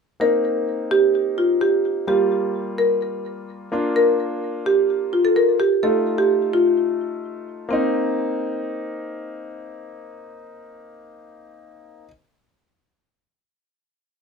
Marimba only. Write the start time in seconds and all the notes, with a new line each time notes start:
0.21 A#4
0.91 G4
1.38 F4
1.61 G4
2.08 G4
2.78 A#4
3.96 A#4
4.66 G4
5.13 F4
5.25 A4
5.36 A#4
5.60 G4
5.83 A4
6.18 G4
6.53 F4
7.71 C4